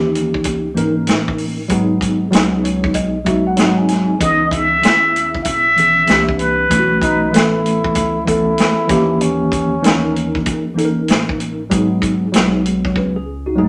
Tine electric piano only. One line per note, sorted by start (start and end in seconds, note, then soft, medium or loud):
0.00 0.65 E3 medium
0.00 0.66 A#3 medium
0.00 0.66 C#4 medium
0.00 0.66 D#4 medium
0.00 0.70 G4 medium
0.75 1.59 E3 medium
0.75 1.59 A#3 medium
0.75 1.60 C#4 medium
0.75 1.60 D#4 medium
0.75 1.60 A#4 medium
1.68 2.25 F#3 medium
1.68 2.25 G#3 medium
1.68 2.26 B3 medium
1.68 2.26 D#4 medium
1.68 2.27 G#4 medium
2.31 3.15 F#3 medium
2.31 3.16 G#3 medium
2.31 3.16 B3 medium
2.31 3.16 D#4 medium
2.31 3.16 G#4 loud
2.64 2.93 C#5 medium
2.95 3.24 D#5 medium
3.24 3.55 F#3 medium
3.24 3.56 G#3 medium
3.24 3.58 B3 medium
3.24 3.58 D#4 medium
3.24 3.58 F#4 medium
3.24 3.45 E5 medium
3.47 3.57 F#5 medium
3.57 4.13 F#3 medium
3.57 4.13 G#3 medium
3.57 4.14 C4 medium
3.57 4.14 D#4 medium
3.57 4.14 G#4 loud
3.57 3.77 F#5 medium
3.78 3.88 G#5 medium
3.89 4.18 G#5 medium
4.19 4.75 E3 medium
4.19 4.76 B3 medium
4.19 4.76 C#4 medium
4.19 4.76 D#4 medium
4.19 4.77 G#4 medium
4.81 4.91 D#3 medium
4.81 5.66 B3 medium
4.81 5.66 C#4 medium
4.81 5.67 G#4 medium
4.88 5.69 E4 medium
5.76 6.09 D#3 medium
5.76 6.05 E3 medium
5.76 6.09 B3 medium
5.76 6.09 C#4 medium
5.76 6.09 G#4 medium
6.06 6.63 E3 medium
6.06 6.63 A#3 medium
6.06 6.64 C4 medium
6.06 6.64 D4 medium
6.06 6.64 G4 medium
6.69 7.25 E3 medium
6.69 7.26 A3 medium
6.69 7.26 B3 medium
6.69 7.27 C#4 medium
6.69 6.80 E4 medium
6.79 7.30 F#4 medium
7.31 8.15 E3 medium
7.31 8.16 A3 medium
7.31 8.16 B3 medium
7.31 8.16 C#4 medium
7.31 8.17 A4 loud
8.25 8.86 E3 medium
8.25 8.89 A3 medium
8.25 8.89 B3 medium
8.25 8.88 C#4 medium
8.25 8.90 A4 medium
8.87 9.73 D#3 medium
8.87 9.71 E3 medium
8.87 9.72 A#3 loud
8.87 9.72 C#4 medium
8.87 9.73 G4 loud
9.82 10.66 E3 medium
9.82 10.66 A#3 medium
9.82 10.66 C#4 medium
9.82 10.67 D#4 medium
9.82 10.67 A#4 loud
10.75 11.59 E3 medium
10.75 11.59 A#3 medium
10.75 11.60 C#4 medium
10.75 11.60 D#4 medium
10.75 10.86 A4 medium
10.85 11.64 A#4 medium
11.70 12.26 F#3 medium
11.70 12.26 G#3 medium
11.70 12.26 B3 medium
11.70 12.27 D#4 medium
11.70 12.27 G#4 loud
12.32 13.16 F#3 medium
12.32 13.16 G#3 medium
12.32 13.17 B3 medium
12.32 12.65 D#4 medium
12.32 12.66 G#4 loud
12.85 12.96 C#5 medium
12.97 13.15 G#4 medium
12.97 13.16 B4 medium
13.16 13.46 G#4 medium
13.46 13.57 D#4 medium
13.46 13.69 F#4 medium
13.56 13.69 F#3 medium
13.56 13.69 G#3 medium
13.56 13.66 A3 medium
13.56 13.69 D#4 medium
13.56 13.69 G#4 loud
13.64 13.69 C4 medium